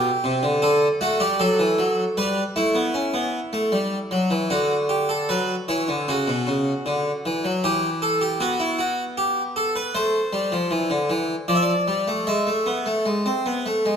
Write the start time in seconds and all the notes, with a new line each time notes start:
Already playing: G4
0.24 C3
0.43 D3
0.62 D3 A4
1.01 A3 F#4
1.20 G3 G4
1.40 F#3 A4
1.59 E3
1.78 F#3
2.17 G3 B4
2.56 A3 E4
2.75 B3
2.94 C#4
3.14 B3
3.53 A3
3.72 G3
4.11 F#3
4.30 E3
4.50 D3 F#4
4.89 G4
5.09 A4
5.29 F#3 B4
5.68 E3 C#5
5.88 D3
6.08 C#3 F#4
6.28 B2
6.47 C#3
6.86 D3
7.25 E3
7.44 F#3
7.64 E3 G4
8.02 A4
8.21 G4
8.40 B3 F#4
8.60 E4
8.79 F#4
9.17 G4
9.56 A4
9.76 B4
9.95 A3 C5
10.33 G3
10.52 F3
10.71 E3
10.90 D3
11.10 E3
11.48 F3 D5
11.55 E5
11.62 D5
11.88 G3
12.08 A3
12.27 G#3 E5
12.47 A3
12.66 B3
12.86 A3
13.06 G#3
13.26 C4
13.46 B3
13.66 A3
13.86 G#3